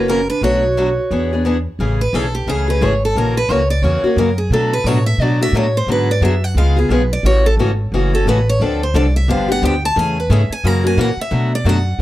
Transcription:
Already playing: F#1
0.08 C#3 E3 A#3 C#4 F#4 A#4
0.30 D4 B4
0.41 B1 B2 F#3 A3 D4 F#4 C#5
0.77 B2 F#3 A3 D4 F#4
1.11 E2 E3 B3 D4 G#4
1.33 B3 D4 G#4
1.45 E3 B3 D4 G#4
1.79 A1 C#3 E3 A3 C#4 G#4
2.01 B4
2.13 B1 C#3 E3 A3 C#4 G#4 A4
2.35 G4
2.47 C#2 C#3 E3 A3 C#4 G#4
2.68 A3 C#4 G#4 B4
2.81 G#1 C#3 E3 A3 C#4 G#4 C#5
3.05 A4
3.15 A#1 C#3 E3 A#3 C#4 F#4 A#4
3.37 B4
3.49 C#2 C#3 E3 A#3 C#4 F#4 C#5
3.70 D5
3.82 E2 C#3 E3 A#3 C#4 F#4 C#5
4.03 A#3 C#4 F#4, muted upright bass stroke
4.16 F#2 C#3 E3 A#3 C#4 F#4 A#4
4.38 G#4
4.50 B2 F#3 A3 D4 F#4 A4
4.73 B4
4.84 A2 B2 F#3 A3 D4 C#5
4.88 F#4
5.06 E5
5.18 B2 F#3 A3 D4 D5
5.22 F#4
5.41 A3 D4 F#4 E5
5.52 A2 B2 F#3 A3 D4 F#4
5.57 C#5
5.77 C5
5.87 G#2 D3 F#3 B3 F#4 G#4
5.92 B4
6.11 D5
6.21 F#2 D3 F#3 B3 F#4 G#4 E5
6.44 F#5
6.55 C#2 C#3 G#3 B3 F4 G#4 F5
6.76 B3 F4 G#4
6.89 B1 C#3 G#3 B3 F4 G#4 B4
7.13 D5
7.23 A1 C#3 E3 A3 C#4 F#4 C#5
7.46 A4
7.57 G#1 C#3 E3 A3 C#4 F#4
7.92 F#1 C#3 E3 A3 C#4 F#4
8.13 A3 C#4 F#4 A4
8.26 A1 C#3 E3 A3 C#4 F#4 B4
8.49 C#5
8.60 D2 D3 F3 C4 D4 A4 D5
8.83 C5
8.94 C2 D3 F3 C4 D4 A4 D5
9.16 E5
9.28 G1 D3 F3 B3 D4 G4 F5
9.48 B3 D4 G4 F#5
9.62 D2 D3 F3 B3 D4 G4 G5
9.85 A5
9.96 E2 C#3 E3 A3 C#4 G#4 G#5
10.20 B4
10.30 G#2 C#3 E3 A3 C#4 G#4 E5
10.50 G#5, muted upright bass stroke
10.64 F#2 C#3 E3 A#3 C#4 F#4 A#5
10.84 A#3 C#4 F#4 G#5
10.97 A#2 C#3 E3 A#3 C#4 F#4 F#5
11.17 muted upright bass stroke
11.21 E5
11.31 B2 F#3 A3 D4 F#4
11.55 D5
11.65 F#2 B2 F#3 A3 D4 F#4
11.69 F#5
11.99 E2

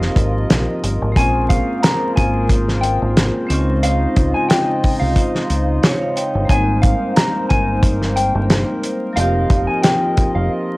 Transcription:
Already playing: F3 A#3 C4 D#4 F4 G4 A#4 D#5 F5
0.02 snare
0.16 G#1, kick, closed hi-hat
0.50 A#1, snare, closed hi-hat
0.83 G1, closed hi-hat
1.02 G#1
1.12 G#3 A#3 C4, kick
1.16 A#1 A#3 C#4 F4 G#4 A#4 C5 G#5, closed hi-hat
1.49 F5, kick, closed hi-hat
1.83 A#5, snare, closed hi-hat
2.16 G#1 G#5, kick, closed hi-hat
2.49 kick, closed hi-hat
2.68 snare
2.81 G5, closed hi-hat
3.02 G#1
3.17 snare, closed hi-hat
3.47 C#2 C#3 G#3 C4 C#4 D#4 F4 D#5, closed hi-hat
3.52 D#4 F4
3.83 F5, closed hi-hat
4.16 C#2, kick, closed hi-hat
4.34 G#5
4.49 G5, snare, closed hi-hat
4.84 kick, open hi-hat
5.00 C2 F5
5.16 kick, closed hi-hat
5.35 snare
5.50 C#2, closed hi-hat
5.83 C#5, snare, closed hi-hat
6.01 F5
6.16 G5, closed hi-hat
6.35 G1
6.45 G#3 A#3 C4 D#4 A#4 C5
6.49 G#1 G3 D#4 G#5, kick, closed hi-hat
6.82 F5, kick, closed hi-hat
7.16 A#5, snare, closed hi-hat
7.49 G1 G#5, kick, closed hi-hat
7.83 kick, closed hi-hat
8.02 snare
8.16 G5, closed hi-hat
8.35 G1
8.50 snare, closed hi-hat
8.83 closed hi-hat
9.13 F1 F3 A#3 C4 F4 D#5 F5, closed hi-hat
9.19 D#4 G4
9.50 F1, kick, closed hi-hat
9.67 G#5
9.82 G5, snare, closed hi-hat
10.17 kick, closed hi-hat
10.35 F1 F5

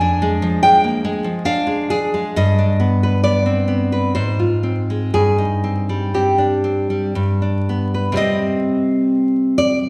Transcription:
Already playing: F2 G#5
0.01 D4
0.22 G#3
0.42 F3
0.63 G#3 G5
0.84 A#3
1.05 G#3
1.24 F3
1.45 D4 F5
1.67 G#3
1.90 D4 G#4
2.14 G#3
2.36 G2 D#5
2.59 D4
2.80 B3
3.03 B4
3.24 B3 D5
3.46 C4
3.68 B3
3.92 B4
4.15 G#2 C5
4.39 F4
4.63 C4
4.90 G#3
5.14 G2 G#4
5.38 D#4
5.64 C4
5.89 G3
6.14 C4 G4
6.38 D4
6.64 C4
6.90 G3
7.15 G2
7.42 D4
7.69 B3
7.94 B4
8.12 C3 G3 C4
8.17 D#5
9.58 D5

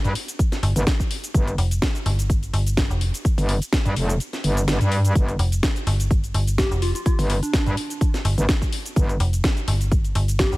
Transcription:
0.04 G2, closed hi-hat, shaker
0.15 open hi-hat
0.28 closed hi-hat, shaker
0.39 kick, closed hi-hat, shaker
0.52 snare, closed hi-hat, shaker
0.63 G1, open hi-hat
0.76 G1, closed hi-hat, shaker
0.87 kick, snare, closed hi-hat, shaker
1.00 kick, shaker
1.11 open hi-hat
1.24 closed hi-hat, shaker
1.34 G1, kick, closed hi-hat, shaker
1.47 closed hi-hat, shaker
1.58 F1, open hi-hat
1.71 closed hi-hat, shaker
1.82 kick, snare, closed hi-hat, shaker
1.95 closed hi-hat, shaker
2.06 G1, open hi-hat
2.19 closed hi-hat, shaker
2.30 kick, closed hi-hat, shaker
2.43 closed hi-hat, shaker
2.53 G1, open hi-hat
2.67 closed hi-hat, shaker
2.77 kick, snare, closed hi-hat, shaker
2.90 F1, shaker
3.01 open hi-hat
3.14 closed hi-hat, shaker
3.25 kick, closed hi-hat, shaker
3.38 G1, open hi-hat, shaker
3.49 open hi-hat
3.62 closed hi-hat, shaker
3.73 kick, snare, closed hi-hat, shaker
3.85 G2, closed hi-hat, shaker
3.96 F1, open hi-hat
4.09 closed hi-hat, shaker
4.20 closed hi-hat, shaker
4.33 snare, closed hi-hat, shaker
4.44 G1, open hi-hat
4.57 closed hi-hat, shaker
4.68 snare, closed hi-hat, shaker
4.81 G2, closed hi-hat, shaker
4.92 open hi-hat
5.05 closed hi-hat, shaker
5.15 G1, kick, closed hi-hat, shaker
5.28 closed hi-hat, shaker
5.39 F1, open hi-hat
5.52 closed hi-hat, shaker
5.63 kick, snare, closed hi-hat, shaker
5.76 closed hi-hat, shaker
5.87 G1, open hi-hat
6.00 closed hi-hat, shaker
6.11 kick, closed hi-hat, shaker
6.24 closed hi-hat, shaker
6.34 G1, open hi-hat
6.47 closed hi-hat, shaker
6.58 G4, kick, snare, closed hi-hat, shaker
6.71 F1, shaker
6.82 F4, open hi-hat
6.95 F4, closed hi-hat, shaker
7.06 F4, kick, closed hi-hat, shaker
7.19 G1, open hi-hat, shaker
7.30 open hi-hat
7.43 D4, closed hi-hat, shaker
7.53 kick, snare, closed hi-hat, shaker
7.66 G2, closed hi-hat, shaker
7.77 open hi-hat
7.90 closed hi-hat, shaker
8.01 kick, closed hi-hat, shaker
8.14 snare, closed hi-hat, shaker
8.25 G1, open hi-hat
8.38 G1, closed hi-hat, shaker
8.49 kick, snare, closed hi-hat, shaker
8.62 kick, shaker
8.73 open hi-hat
8.85 closed hi-hat, shaker
8.96 G1, kick, closed hi-hat, shaker
9.09 closed hi-hat, shaker
9.20 F1, open hi-hat
9.33 closed hi-hat, shaker
9.44 kick, snare, closed hi-hat, shaker
9.57 closed hi-hat, shaker
9.68 G1, open hi-hat
9.81 closed hi-hat, shaker
9.92 kick, closed hi-hat, shaker
10.04 closed hi-hat, shaker
10.15 G1, open hi-hat
10.28 closed hi-hat, shaker
10.39 G4, kick, snare, closed hi-hat, shaker
10.52 F1, shaker

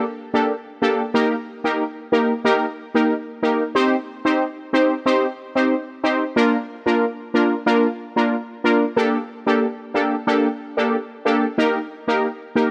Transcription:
0.34 A#3 D4 G4 A4
0.82 A#3 D4 G4 A4
1.14 A#3 D#4 G4 A#4
1.64 A#3 D#4 G4 A#4
2.12 A#3 D#4 G4 A#4
2.44 A#3 D#4 G4 A#4
2.94 A#3 D#4 G4 A#4
3.43 A#3 D#4 G4 A#4
3.75 C4 D#4 G4 C5
4.25 C4 D#4 G4 C5
4.73 C4 D#4 G4 C5
5.06 C4 D#4 G4 C5
5.55 C4 D#4 G4 C5
6.03 C4 D#4 G4 C5
6.36 A#3 D4 F4 A#4
6.86 A#3 D4 F4 A#4
7.34 A#3 D4 F4 A#4
7.66 A#3 D4 F4 A#4
8.16 A#3 D4 F4 A#4
8.64 A#3 D4 F4 A#4
8.96 A#3 D4 G4 A4
9.47 A#3 D4 G4 A4
9.94 A#3 D4 G4 A4
10.27 A#3 D4 G4 A4
10.77 A#3 D4 G4 A4
11.25 A#3 D4 G4 A4
11.58 A#3 D#4 G4 A#4
12.08 A#3 D#4 G4 A#4
12.55 A#3 D#4 G4 A#4

